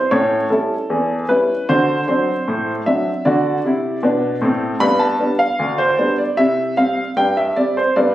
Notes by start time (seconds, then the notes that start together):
Already playing: C5
0.11 A2 C#4 C#5
0.50 G3 C#4 E4 A4
0.90 E2
1.29 G3 C#4 E4 B4
1.69 D3 F#4 C5
2.08 F#3 C4 D4 C5
2.48 A2
2.86 F#3 C4 D4 E5
3.25 D3 F#4 D5
3.64 C3 E4
4.03 B2 D4
4.42 A2 C4
4.80 G2 B3 B5
4.99 A5
5.19 G3 B3 D4
5.39 F5
5.59 D2
5.78 C5
5.98 G3 B3 D4
6.18 D5
6.37 C3 E4 E5
6.77 G3 C4 F5
7.17 G2 G5
7.37 E5
7.56 G3 C4 D5
7.77 C5
7.96 G2 B3 D5